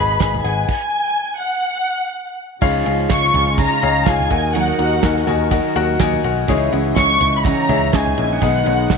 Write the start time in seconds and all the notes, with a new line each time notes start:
Already playing: G#1 G#2 G#3 D#4 F#4 G#4 B4 D#5 F#5 G#5 B5
0.20 G#1 G#4 B4 D#5 G#5, kick, snare, closed hi-hat
0.34 floor tom
0.44 G#1 G#4 B4 D#5 F#5 G#5, closed hi-hat
0.68 G#5, kick, crash
1.41 F#5
2.61 C#2 C#3 F3 G#3 C#4 D#4 F4 G#4 C#5 D#5 F5, kick, crash
2.85 C#2 D#4 F4 G#4 C#5 D#5 F5, ride
3.09 C#2 G#3 D#4 F4 G#4 C#5 D#5 F5 C#6, kick, snare, ride
3.24 snare
3.34 C#2 G#4 C#5 D#5 G#5, floor tom, ride
3.58 C#3 G#3 D#4 F4 G#4 C#5 D#5 G#5 A#5, kick, ride
3.82 C#2 C#3 C#4 G#4 C#5 D#5 F5, ride
4.06 C#2 G#3 D#4 F4 G#4 C#5 D#5 F5 G#5, kick, snare, ride
4.20 floor tom
4.30 D#2 D#3 D#4 F#4 A#4 D#5 F#5, kick, ride
4.54 D#3 F#3 D#4 F#4 A#4 F#5, ride
4.78 D#2 D#4 F#4 A#4 D#5 F#5, ride
5.02 D#2 F#3 D#4 F#4 A#4 D#5 G#5, kick, snare, ride
5.17 snare
5.27 D#2 D#4 F#4 A#4 D#5 G#5, floor tom, ride
5.51 D#3 F#3 D#4 F#4 A#4 D#5 F#5, kick, ride
5.76 D#2 F#4 A#4 D#5 F#5, ride
5.99 D#2 F#3 D#4 F#4 A#4 D#5 G#5, kick, snare, ride
6.13 floor tom
6.24 B1 F#4 A#4 D#5 F#5, ride
6.48 C#2 C#3 E3 G#3 C#4 D#4 E4 G#4 C#5 D#5, kick, ride
6.72 C#2 G#3 C#4 D#4 E4 G#4 C#5 F#5, ride
6.96 C#2 G#3 C#4 D#4 E4 G#4 C#5 D#5 C#6, kick, snare, ride
7.10 snare
7.21 C#2 E4 G#4 C#5 D#5, floor tom, ride
7.39 B5
7.45 C#3 E3 G#3 C#4 D#4 E4 G#4 C#5 F#5 A#5, kick, ride
7.69 C#2 E4 G#4 C#5 E5, floor tom, ride
7.93 C#2 G#3 C#4 D#4 E4 G#4 C#5 D#5 G#5, kick, snare, ride
8.07 floor tom
8.18 A#1 E4 G#4 C#5 D#5, ride
8.41 B1 B2 D#3 G#3 B3 D#4 G#4 B4 D#5 F#5, kick, ride
8.65 B1 G#3 B3 D#4 G#4 B4 C#5, ride
8.89 B1 G#3 B3 D#4 G#4 B4 F#5, kick, snare, ride